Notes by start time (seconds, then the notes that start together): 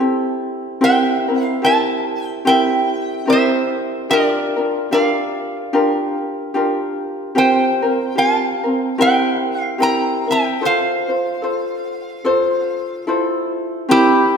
0.00 C4 E4 G4 A4
0.81 C4 E4 G4 A#4 E5 G5
1.28 C4 E4 A#4
1.44 F5
1.62 C4 E4 G4 A#4 A5
1.66 E5
2.26 G5
2.45 C4 E4 G4 A#4 E5 G5
3.25 C4 E4 G4 A#4
3.30 C5 E5
4.09 D4 F4 G4 A#4 D5
4.56 D4 F4 A#4
4.91 D4 F4 G4 A#4 D5 F5
5.73 D4 F4 G4 A#4
6.54 D4 F4 G4 A#4
7.35 C4 F4 G4 A#4 C5 G5
7.82 C4 F4 A#4
8.15 C4 F4 G4 A#4 F5 A5
8.63 C4 F4 A#4
8.98 C4 E4 G4 A#4 E5 G5
9.62 F5
9.78 C4 E4 G4 A#4 G5
9.83 A#5
10.27 C4 E4 A#4 E5
10.32 G5
10.61 F4 A4 C5
10.65 C5 F5
11.09 F4 C5
11.42 F4 A4 C5
12.25 F4 A4 C5
13.07 E4 F4 A4 C5
13.89 C4 E4 G4 A#4